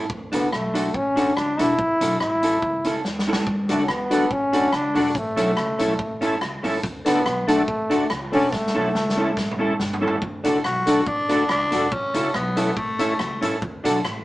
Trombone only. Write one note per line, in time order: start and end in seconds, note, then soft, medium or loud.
0.33 0.54 B3 medium
0.53 0.96 A3 medium
0.95 1.38 C#4 loud
1.37 1.61 D4 loud
1.59 2.20 E4 loud
2.21 3.01 E4 medium
3.70 3.82 A3 medium
3.83 3.92 C#4 medium
3.90 4.33 B3 medium
4.32 4.76 C#4 loud
4.75 5.19 D4 loud
5.17 6.43 A3 medium
7.06 7.50 B3 medium
7.48 8.10 A3 medium
8.33 8.54 C#4 loud
8.53 9.80 A3 medium